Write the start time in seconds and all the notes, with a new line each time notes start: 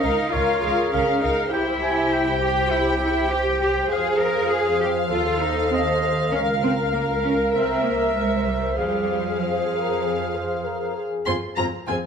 Already playing: A#4 D#5 F5
0.02 C#2 D#4 A#4 F5
0.31 C#2 F4 A#4 C#5 F5
0.61 C#2 G#4 A#4 F5
0.92 C#2 C#4 A#4 F5
1.21 C#2 D#4 A#4 F5
1.51 C2 E4 G4 C5 G5
1.83 G#5
2.12 G5
2.42 G4
2.71 E4 G4
3.01 E4
3.31 G4 G5
3.61 G4
3.90 F2 G#4 F5
4.20 A#4
4.51 G#4
4.81 G4
5.09 D#2 F4 A4
5.13 A4
5.41 D#4
5.71 C4 C5 D#5
6.32 C#2 C#4 A#4 F5
6.63 C4
6.92 A#3 A#4 F5
7.24 C#4
7.54 C2 C4 A#4 C5 E5
7.84 A#3
8.15 G#3
8.46 G3
8.77 F2 G3 G#4 F5
9.40 F3 G#4 C5 F5
9.74 A#4
10.02 G#4
10.33 C5
10.65 A#4
10.95 G#4
11.26 F2 C4 F4 G#4 C5 C6
11.56 F2 C4 F4 G#4 C5 A#5
11.87 F2 C4 F4 G#4 C5 G#5